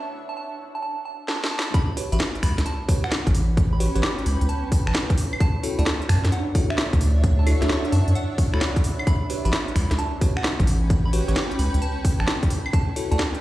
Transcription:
Already playing: A5
0.29 A5
0.37 A5
0.75 A5
0.82 A5
1.05 A5
1.28 A5, snare
1.44 snare
1.51 A5
1.59 snare
1.74 C#4 B5, kick, closed hi-hat
1.97 F#4 G4 B4 C#5, open hi-hat
2.12 A1 F#4 G4 B4 E5 B5, closed hi-hat
2.20 snare
2.35 closed hi-hat
2.43 C#2 B5, finger snap, kick, open hi-hat
2.58 C#2, snare, closed hi-hat
2.66 A5, closed hi-hat
2.70 G5
2.89 F#4 G4 B4 C#5, kick, open hi-hat
3.04 F#5, finger snap
3.12 snare
3.27 A1, kick, closed hi-hat
3.35 open hi-hat
3.57 kick, closed hi-hat
3.73 B5
3.80 F#4 G4 B4 C#5, open hi-hat
3.95 A1 F#4 G4 B4 C#5, closed hi-hat
4.03 D6, snare
4.18 closed hi-hat
4.26 C#2 B5, open hi-hat
4.41 C#2, closed hi-hat
4.49 A5, closed hi-hat
4.72 kick, open hi-hat
4.87 A1 A5, finger snap
4.95 snare
5.10 kick, closed hi-hat
5.18 D4, open hi-hat
5.33 claves
5.40 A5, kick, closed hi-hat
5.46 C#5
5.63 E4 F#4 A4 C#5, open hi-hat
5.68 E5
5.79 D2 E4 F#4 A4 D5 A5, closed hi-hat
5.86 snare
6.02 closed hi-hat
6.09 F#2 A5, finger snap, kick, open hi-hat
6.25 F#2 F#5, snare, closed hi-hat
6.32 F#5, closed hi-hat
6.55 E4 F#4 A4 C#5, kick, open hi-hat
6.70 E5, finger snap
6.78 snare
6.93 D2, kick, closed hi-hat
7.01 open hi-hat
7.24 kick, closed hi-hat
7.39 A5
7.47 E4 F#4 A4 C#5, open hi-hat, claves
7.62 D2 E4 F#4 A4 C#5, snare, closed hi-hat
7.69 C#6, snare
7.85 closed hi-hat
7.92 F#2 A5, open hi-hat
8.08 F#2, closed hi-hat
8.15 F#5, closed hi-hat
8.38 kick, open hi-hat
8.54 D2 E4 F#4 A4 C#5 B5, finger snap
8.61 snare
8.76 kick, closed hi-hat
8.84 open hi-hat
8.99 claves
9.07 C#4 B5, kick, closed hi-hat
9.30 F#4 G4 B4 C#5, open hi-hat
9.40 B4 G5
9.45 A1 F#4 G4 B4 E5 B5, closed hi-hat
9.53 snare
9.68 closed hi-hat
9.76 C#2 B5, finger snap, kick, open hi-hat
9.91 C#2, snare, closed hi-hat
9.98 A5, closed hi-hat
10.21 F#4 G4 B4 C#5, kick, open hi-hat
10.37 F#5, finger snap
10.44 snare
10.60 A1, kick, closed hi-hat
10.67 open hi-hat
10.90 kick, closed hi-hat
11.05 B5
11.13 F#4 G4 B4 C#5, open hi-hat
11.28 A1 F#4 G4 B4 C#5, closed hi-hat
11.36 D6, snare
11.51 closed hi-hat
11.59 C#2 B5, open hi-hat
11.74 C#2, closed hi-hat
11.82 A5, closed hi-hat
12.05 kick, open hi-hat
12.20 A1 A5, finger snap
12.28 snare
12.43 kick, closed hi-hat
12.50 D4, open hi-hat
12.62 C#5 E5
12.66 claves
12.73 A5, kick, closed hi-hat
12.96 E4 F#4 A4 C#5, open hi-hat
13.11 D2 E4 F#4 A4 D5 F#5 A5, closed hi-hat
13.19 snare
13.35 closed hi-hat

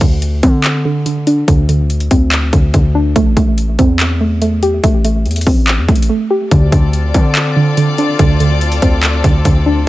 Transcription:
0.01 D2 D3, kick, closed hi-hat
0.22 closed hi-hat
0.43 D3 C4, kick, closed hi-hat
0.64 clap, closed hi-hat
0.85 D3
1.06 D3, closed hi-hat
1.27 D4, closed hi-hat
1.48 D2 D3, kick, closed hi-hat
1.69 D3, closed hi-hat
1.90 closed hi-hat
2.00 closed hi-hat
2.11 D2 C4, kick, closed hi-hat
2.32 clap, closed hi-hat
2.53 D2 D3, kick, closed hi-hat
2.74 D2 D3, kick, closed hi-hat
2.95 D4
3.16 A1 A3, kick, closed hi-hat
3.37 A1 A3, kick, closed hi-hat
3.58 closed hi-hat
3.79 E2 C4, kick, closed hi-hat
4.00 clap, closed hi-hat
4.21 A3
4.42 A3, closed hi-hat
4.63 G4, closed hi-hat
4.84 A1 A3, kick, closed hi-hat
5.05 A3, closed hi-hat
5.26 E2, closed hi-hat
5.31 closed hi-hat
5.36 closed hi-hat
5.41 closed hi-hat
5.47 A1 C4, kick, open hi-hat
5.67 clap, closed hi-hat
5.78 E2
5.88 A1 A3, kick, closed hi-hat
5.95 closed hi-hat
6.02 closed hi-hat
6.09 A3
6.30 G4
6.51 D2 D3 C4 F4 A4 D5, kick, closed hi-hat
6.72 D2 D3, kick, closed hi-hat
6.93 closed hi-hat
7.14 D3 C4, kick, closed hi-hat
7.35 clap, closed hi-hat
7.56 D3
7.77 D3, closed hi-hat
7.98 D4, closed hi-hat
8.19 D2 D3, kick, closed hi-hat
8.40 D3, closed hi-hat
8.61 closed hi-hat
8.72 closed hi-hat
8.82 D2 C4, kick, closed hi-hat
9.03 clap, closed hi-hat
9.24 D2 D3, kick, closed hi-hat
9.45 D2 D3, kick, closed hi-hat
9.66 D4

